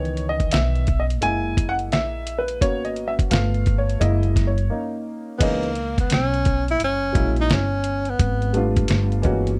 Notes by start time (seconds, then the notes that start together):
Already playing: C#2 D#3 E3 B3 C#5
0.05 closed hi-hat
0.17 closed hi-hat
0.29 D#5
0.40 kick, closed hi-hat
0.51 B1 E5, snare, closed hi-hat
0.75 closed hi-hat
0.87 kick, closed hi-hat
1.00 D#5
1.10 closed hi-hat
1.21 F#1 G#3 A#3 E4 G#5, closed hi-hat
1.57 kick, closed hi-hat
1.69 F#5
1.79 closed hi-hat
1.92 A#1 E5, snare, closed hi-hat
2.27 closed hi-hat
2.39 B4
2.48 closed hi-hat
2.61 G#1 A#3 B3 C#4 F#4 C#5, kick, closed hi-hat
2.85 D#5, closed hi-hat
2.96 closed hi-hat
3.08 E5
3.19 kick, closed hi-hat
3.30 G1 A3 B3 F4 F5, snare, closed hi-hat
3.54 closed hi-hat
3.66 kick, closed hi-hat
3.78 C#5
3.89 closed hi-hat
4.00 F#1 G#3 A#3 E4 D#5, closed hi-hat
4.23 closed hi-hat
4.36 kick, snare, closed hi-hat
4.47 C#5
4.58 closed hi-hat
4.70 A#3 C#4 D#4
5.38 C#2 E3 G#3 B3 C#4 D#4, kick, closed hi-hat, crash
5.43 A#3
5.63 closed hi-hat
5.75 closed hi-hat
5.98 B3, kick, closed hi-hat
6.10 B1 C#4, snare, closed hi-hat
6.34 closed hi-hat
6.45 kick, closed hi-hat
6.68 E4, closed hi-hat
6.80 F#1, closed hi-hat
6.84 C#4
7.13 A#1 F#3 G#3 A#3 C#4 E4, kick, closed hi-hat
7.36 closed hi-hat
7.41 D#4
7.50 G1 C#4, snare, closed hi-hat
7.84 closed hi-hat
8.05 closed hi-hat
8.10 B3
8.19 G#1, kick, closed hi-hat
8.42 closed hi-hat
8.53 G3 A3 B3 D4 F4, closed hi-hat
8.76 kick, closed hi-hat
8.88 G1, snare, closed hi-hat
9.12 closed hi-hat
9.22 E3 G#3 A#3 C#4 F#4, kick, closed hi-hat
9.47 closed hi-hat